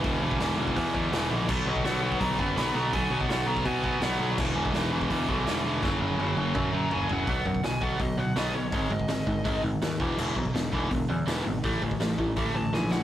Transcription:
<<
  \new Staff \with { instrumentName = "Lead electric guitar" } { \time 4/4 \key e \lydian \tempo 4 = 166 r1 | r8 dis''8 fis''4 ais''8 b''8 b''8 ais''8 | gis''8. fis''8. ais''8 gis''8 gis''8 fis''8. r16 | r1 |
r2 r8 ais''8 gis''8 fis''8~ | \key b \mixolydian fis''8 fis''8 gis''8 fis''8 dis''8 fis''8 dis''8 cis''8~ | cis''8 dis''2 r4. | r1 |
r2 r8 a''8 gis''8 fis''8 | }
  \new Staff \with { instrumentName = "Distorted electric guitar" } { \clef bass \time 4/4 \key e \lydian <e, b, e>8 <e, b, e>8 <e, b, e>8 <e, b, e>8 <e, b, e>8 <e, b, e>8 <e, b, e>8 <e, b, e>8 | <b, fis b>8 <b, fis b>8 <b, fis b>8 <b, fis b>8 <b, fis b>8 <b, fis b>8 <b, fis b>8 <b, fis b>8 | <b, fis b>8 <b, fis b>8 <b, fis b>8 <b, fis b>8 <b, fis b>8 <b, fis b>8 <b, fis b>8 <b, fis b>8 | <e, b, e>8 <e, b, e>8 <e, b, e>8 <e, b, e>8 <e, b, e>8 <e, b, e>8 <e, b, e>8 <e, b, e>8 |
<fis, cis fis>8 <fis, cis fis>8 <fis, cis fis>8 <fis, cis fis>8 <fis, cis fis>8 <fis, cis fis>8 <fis, cis fis>8 <fis, cis fis>8 | \key b \mixolydian <b, fis b>8 <b, fis>8 <b, fis>8 <b, fis b>8 <b, fis>8 <b, fis>8 <b, fis b>8 <b, fis>8 | <gis, dis gis>8 <gis, dis>8 <gis, dis>8 <gis, dis>8 <gis, dis gis>8 <gis, dis>8 <gis, dis>8 <e, b, e>8 | <e, b, e>8 <e, b,>8 <e, b,>8 <e, b, e>8 <e, b,>8 <e, b,>8 <e, b, e>8 <e, b,>8 |
<a, e a>8 <a, e>8 <a, e>8 <a, e>8 <a, e a>8 <a, e>8 <a, e>8 <a, e>8 | }
  \new Staff \with { instrumentName = "Distorted electric guitar" } { \clef bass \time 4/4 \key e \lydian <e, b, e>2~ <e, b, e>8 <e, b, e>8 <e, b, e>4 | <b, fis b>2~ <b, fis b>8 <b, fis b>8 <b, fis b>4 | <b, fis b>2~ <b, fis b>8 <b, fis b>8 <b, fis b>4 | <e, b, e>2~ <e, b, e>8 <e, b, e>8 <e, b, e>4 |
<fis, cis fis>2~ <fis, cis fis>8 <fis, cis fis>8 <fis, cis fis>4 | \key b \mixolydian r1 | r1 | r1 |
r1 | }
  \new Staff \with { instrumentName = "Picked electric bass" } { \clef bass \time 4/4 \key e \lydian e,,8 e,,8 e,,8 e,,8 e,4 e,,8 ais,,8 | b,,8 b,,8 b,,4 b,,8 fis,,8 b,,8 b,,8 | b,,8 b,,8 b,,8 b,,8 b,4 b,,8 b,,8 | e,,8 e,,8 e,,4 e,,8 b,,8 e,,8 e,,8 |
fis,,8 fis,,8 fis,,8 fis,,8 fis,4 fis,,8 fis,,8 | \key b \mixolydian b,,8 fis,8 b,,8 b,,8 b,,8 b,8 b,,8 b,,8 | gis,,8 gis,,8 gis,,8 gis,,8 gis,,8 gis,,8 dis,8 e,,8 | e,,8 b,,8 e,,8 e,,8 e,,8 e,8 e,,8 gis,,8 |
a,,8 a,,8 a,,8 a,,8 a,,8 a,,8 ais,,4 | }
  \new DrumStaff \with { instrumentName = "Drums" } \drummode { \time 4/4 <hho bd>8. bd16 <hho sn>8. bd16 <hho bd>8 bd8 <hho sn>4 | <cymc bd>8. bd16 <hho sn>8. bd16 <hho bd>8 bd8 <hho sn>4 | <hho bd>8. bd16 <hho sn>8. bd16 <hho bd>8 bd8 <hho sn>4 | <cymc bd>8. bd16 <hho sn>8. bd16 <hho bd>8 bd8 <hho sn>4 |
<bd sn>4 tommh8 tommh8 <bd toml>4 tomfh8 tomfh8 | <hho bd>8 bd16 bd16 <hho sn>8 bd8 <hho bd>4 <hho sn>4 | <hho bd>8 bd16 bd16 <hho sn>8 bd8 <hho bd>4 <hho sn>8 bd8 | cymc8 bd16 bd16 <hho sn>8 bd8 <hho bd>4 <hho sn>4 |
<hho bd>8 bd16 bd16 <hho sn>8 bd8 <hho bd>4 sn8 sn8 | }
>>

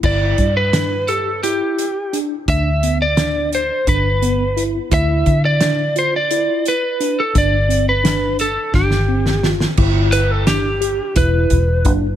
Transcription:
<<
  \new Staff \with { instrumentName = "Lead electric guitar" } { \time 7/8 \key g \mixolydian \tempo 4 = 86 d''8. b'8. a'8 g'4 r8 | e''8. d''8. c''8 b'4 r8 | e''8. d''8. c''16 d''8. b'8. a'16 | d''8. b'8. a'8 g'4 r8 |
\key g \major r8 b'16 a'16 g'4 b'4 r8 | }
  \new Staff \with { instrumentName = "Tine electric piano" } { \time 7/8 \key g \mixolydian e'4 d'8 g'8 e'4 d'8 | d'8 b8 d'4 d'8 b8 e'8 | e'4 d'8 f'8 e'4 d'8 | d'8 c'8 d'4 d'8 c'8 f'8 |
\key g \major e'4 d'8 g'8 e'4 d'8 | }
  \new Staff \with { instrumentName = "Fingered electric bass" } { \clef bass \time 7/8 \key g \mixolydian g,,8 g,2 r4 | d,2 g,,4. | d,8 d2 r4 | g,,2 g,,4. |
\key g \major g,,2 e,,8 e,,8 fis,,8 | }
  \new DrumStaff \with { instrumentName = "Drums" } \drummode { \time 7/8 <cymc bd>8 <hh bd>8 <hh sn>8 hh8 hh8 hh8 hh8 | <hh bd>8 hh8 <hh sn>8 hh8 <hh bd>8 hh8 hh8 | <hh bd>8 <hh bd>8 <hh sn>8 hh8 hh8 hh8 hh8 | <hh bd>8 hh8 <hh sn>8 hh8 <bd sn>16 sn8 sn16 sn16 sn16 |
<cymc bd>8 hh8 <hh sn>8 hh8 <hh bd>8 <hh bd>8 <hh bd>8 | }
>>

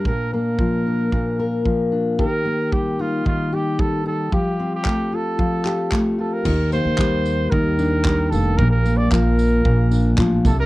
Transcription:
<<
  \new Staff \with { instrumentName = "Trumpet" } { \time 4/4 \key bes \major \tempo 4 = 112 bes'8 bes'2. r8 | bes'4 g'8 f'8 f'8 g'8 a'8 a'8 | g'8. g'8. a'4. r8 a'16 bes'16~ | bes'8 c''4. bes'4. a'8 |
bes'16 bes'8 d''16 bes'2 r8 a'16 bes'16 | }
  \new Staff \with { instrumentName = "Steel-string acoustic guitar" } { \time 4/4 \key bes \major <bes, bes'>8 bes8 f8 d'8 bes,8 bes'8 f8 d'8 | <ees g'>8 bes8 g8 ees'8 ees8 g'8 g8 ees'8 | <f g'>8 c'8 a8 f'8 f8 g'8 a8 f'8 | ees8 bes8 g4 ees8 d'8 g8 bes8 |
bes,8 bes8 f4 bes,8 d'8 f8 c8 | }
  \new Staff \with { instrumentName = "Upright bass" } { \clef bass \time 4/4 \key bes \major r1 | r1 | r1 | ees,8. ees,16 ees,4 ees,4. f,,8 |
bes,,4 bes,,4 bes,,4 a,,8 c,8 | }
  \new DrumStaff \with { instrumentName = "Drums" } \drummode { \time 4/4 bd4 bd4 bd4 bd4 | bd4 bd4 bd4 bd4 | bd4 <hc bd>4 bd8 hc8 <hc bd>4 | <cymc bd>8 tamb8 <hc bd>8 tamb8 bd8 tamb8 <hc bd>8 tamb8 |
bd8 tamb8 <hc bd>8 tamb8 bd8 tamb8 <hc bd>8 <bd tamb>8 | }
>>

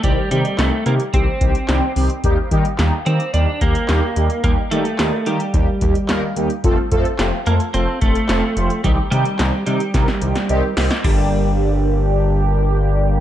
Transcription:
<<
  \new Staff \with { instrumentName = "Analog polysynth" } { \time 4/4 \key g \minor \tempo 4 = 109 <ees g c' ees' g'>16 r16 <ees g c' ees' g'>16 r16 <ees g c' ees' g'>16 r16 <ees g c' ees' g'>16 r16 <ees g c' ees' g'>16 r16 <ees g c' ees' g'>16 r16 <ees g c' ees' g'>16 r16 <ees g c' ees' g'>16 r16 | <ees g bes ees' g'>16 r16 <ees g bes ees' g'>16 r16 <ees g bes ees' g'>16 r16 <ees g bes ees' g'>16 r16 <ees g bes ees' g'>16 r16 <ees g bes ees' g'>16 r16 <ees g bes ees' g'>16 r16 <ees g bes ees' g'>16 r16 | <ees g bes ees' g'>16 r16 <ees g bes ees' g'>16 r16 <ees g bes ees' g'>16 r16 <ees g bes ees' g'>16 r16 <ees g bes ees' g'>16 r16 <ees g bes ees' g'>16 r16 <ees g bes ees' bes'>16 r16 <ees g bes ees' g'>16 r16 | <f a c' f' a'>16 r16 <f a c' f' a'>16 r16 <f a c' f' g'>16 r16 <f a c' f' a'>16 r16 <f a c' f' a'>16 r16 <f a c' f' a'>16 r16 <f a c' f' a'>16 r16 <f a c' f' c''>16 r16 |
<ees g c' ees' g'>16 r16 <ees g c' ees' g'>16 r16 <ees g c' ees' g'>16 r16 <ees g c' ees' g'>16 r16 <ees g c' ees' bes'>16 r16 <ees g c' ees' g'>16 r16 <ees g c' ees' g'>16 r16 <ees g c' ees' g'>16 r16 | <g bes d' g'>1 | }
  \new Staff \with { instrumentName = "Clean electric guitar" } { \time 4/4 \key g \minor g8 g8 a8 bes8 c'4. r8 | r4. c'8 d'8 bes4. | bes8 a4 g2 r8 | r4. bes8 c'8 a4. |
g8 g4 g2 r8 | d1 | }
  \new Staff \with { instrumentName = "Analog synth bass" } { \clef bass \time 4/4 \key g \minor c,16 r16 c16 r16 c,16 r16 c16 r16 c,16 r16 c,16 r16 c,16 r16 c,16 r16 | ees,16 r16 ees16 r16 ees,16 r16 ees16 r16 ees,16 r16 ees,16 r16 ees,16 r16 ees,16 r16 | ees,16 r16 ees16 r16 ees,16 r16 ees16 r16 ees,16 r16 ees,16 r16 ees,16 r16 ees,16 r16 | f,,16 r16 f,16 r16 f,,16 r16 f,16 r16 f,,16 r16 f,,16 r16 f,,16 r16 f,,16 r16 |
c,16 r16 c16 r16 c,16 r16 c16 r16 c,16 r16 c,16 r16 c,16 r16 c,16 r16 | g,,1 | }
  \new DrumStaff \with { instrumentName = "Drums" } \drummode { \time 4/4 <hh bd>8 hh16 hh16 <hc hh sn>8 hh16 hh16 <hh bd>8 <hh bd>16 hh16 <hc hh sn>8 hho16 hh16 | <hh bd>8 <hh bd>16 hh16 <hc hh sn>8 hh16 hh16 hh8 <hh bd>16 hh16 <hc hh sn>8 hh16 hh16 | <hh bd>8 hh16 hh16 <hc hh sn>8 hh16 hh16 <hh bd>8 <hh bd>16 hh16 <hc hh sn>8 hh16 hh16 | <hh bd>8 <hh bd>16 hh16 <hc hh sn>8 hh16 hh16 hh8 <hh bd>16 hh16 <hc hh sn>8 hh16 hh16 |
<hh bd>8 hh16 hh16 <hc hh sn>8 hh16 hh16 <hh bd sn>16 sn16 hh16 <hh sn>16 hh8 <hho sn>16 <hh sn>16 | <cymc bd>4 r4 r4 r4 | }
>>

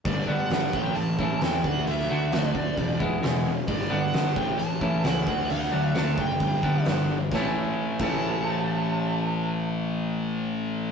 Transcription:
<<
  \new Staff \with { instrumentName = "Lead electric guitar" } { \time 4/4 \key a \mixolydian \tempo 4 = 132 d''8. fis''8. g''8 a''4 g''8 fis''8 | e''4 d''4. r4. | d''8. fis''8. g''8 a''4 fis''4 | fis''4 a''8 g''4. r4 |
a''16 r4 r16 a''2~ a''8~ | a''1 | }
  \new Staff \with { instrumentName = "Clean electric guitar" } { \time 4/4 \key a \mixolydian r8 <d g b d'>8 <d g b d'>8 r4 <e a cis' e'>8 <e a cis' e'>8 r8 | r8 <d a d' fis'>8 <d a d' fis'>8 r4 <e gis b e'>8 <e gis b e'>8 r8 | r8 <d g b d'>8 <d g b d'>8 r4 <e a cis' e'>8 <e a cis' e'>8 r8 | r8 <d fis a d'>8 <d fis a d'>8 r4 <d g b d'>8 <d g b d'>8 r8 |
<a, e a cis' e'>8 r4 <a, e a cis' e'>2~ <a, e a cis' e'>8~ | <a, e a cis' e'>1 | }
  \new Staff \with { instrumentName = "Distorted electric guitar" } { \clef bass \time 4/4 \key a \mixolydian <g, d g>8 <g, d>8 <g, d>8 <a, e a>8 <a, e>8 <a, e>8 <a, e>8 <d a d'>8 | <d a d'>8 <d a>8 <d a>8 <d a>8 <e, b, e>8 <e, b,>8 <e, b,>8 <e, b,>8 | <g, d g>8 <g, d>8 <g, d>8 <a, e a>8 <a, e>8 <a, e>8 <a, e>8 <d a d'>8 | <d a d'>8 <d a>8 <d a>8 <d a>8 <g, d g>8 <g, d>8 <g, d>8 <g, d>8 |
<a, e a>8 r4 <a, e a>2~ <a, e a>8~ | <a, e a>1 | }
  \new Staff \with { instrumentName = "Picked electric bass" } { \clef bass \time 4/4 \key a \mixolydian g,,8 g,,8 g,,8 a,,8 a,,8 a,,8 e,8 d,8 | d,8 d,8 d,8 d,8 e,,8 e,,8 e,,4 | g,,8 g,,8 g,,8 a,,8 a,,8 a,,8 cis,8 d,8 | d,8 d,8 d,8 fis,,8 g,,8 g,,8 g,,4 |
a,,8 r4 a,,2~ a,,8~ | a,,1 | }
  \new DrumStaff \with { instrumentName = "Drums" } \drummode { \time 4/4 <hho bd>4 <hho sn>8 bd8 hho8 bd8 <hho sn>8 bd8 | hho16 sn8. <hho sn>8 bd8 <hho bd>8 bd8 <hho sn>4 | <hho bd>16 sn8. <hho sn>8 bd8 hho8 bd8 <hho sn>8 bd8 | hho16 sn8. <hho sn>8 bd8 <hho bd>8 bd8 <hho sn>4 |
<bd sn>4 r8 <cymc bd>8 r4 r4 | r4 r4 r4 r4 | }
>>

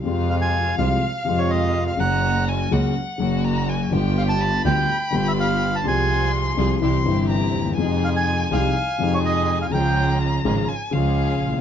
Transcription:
<<
  \new Staff \with { instrumentName = "Violin" } { \time 4/4 \key f \minor \tempo 4 = 124 f''1 | bes''4 aes''8 ges''4. bes''8 aes''8 | g''4 b''2. | c'''2 c'''4 bes''4 |
aes''1 | bes''2 aes''8 f''4. | }
  \new Staff \with { instrumentName = "Bandoneon" } { \time 4/4 \key f \minor r8 f''16 aes''8. f''4~ f''16 des''16 ees''8. f''16 | ges''4 r2. | r8 f''16 a''8. g''4~ g''16 e''16 f''8. a''16 | aes''4 r2. |
r8 f''16 aes''8. f''4~ f''16 des''16 ees''8. f''16 | g''4 r2. | }
  \new Staff \with { instrumentName = "String section" } { \time 4/4 \key f \minor <aes c' f'>4. <aes c' f'>8 r8 <aes c' f'>4. | <bes des' ges'>4. <bes des' ges'>8 r8 <bes des' ges'>4. | <b f' g'>4. <b f' g'>8 r8 <b f' g'>4. | <c' f' aes'>4. <c' f' aes'>8 <c' e' g'>8 <c' e' g'>4. |
<ees' f' aes'>4. <ees' f' aes'>8 r8 <ees' f' aes'>4. | <des' f' aes'>4. <des' f' aes'>8 r8 <des' f' aes'>4. | }
  \new Staff \with { instrumentName = "Grand piano" } { \clef bass \time 4/4 \key f \minor << { <f, c f aes f'>4. <c, c f aes f'>8 r8 <f, c f aes f'>4. | <ges, des ges bes ges'>4. <des, des ges bes ges'>8 r8 <ges, des ges bes ges'>4. | <g,, g, d g b f'>4. <d, d g b f'>8 r8 <g,, g, d g b f'>4. | <c, c f aes f'>4. <c, c f aes f'>8 <c, c e g e'>8 <g,, g, c e g e'>4. |
<f, c f aes ees'>4. <c, c f aes ees'>8 r8 <f, c f aes ees'>4. | <des, des f aes f'>4. <aes,, aes, des f aes f'>8 r8 <des, des f aes f'>4. | } \\ { r1 | r1 | r1 | r2. r8 r32 d,32 ees,32 e,32 |
r1 | r2. r8 r32 a,,32 bes,,32 r32 | } >> }
  \new Staff \with { instrumentName = "Double bass" } { \clef bass \time 4/4 \key f \minor f,4. c,8 r8 f,4. | ges,,4. des,8 r8 ges,,4. | g,,4. d,8 r8 g,,4. | c,4. c,8 c,8 g,,4 ees,8 |
f,4. c,8 r8 f,4. | des,4. aes,,8 r8 des,4 bes,,8 | }
>>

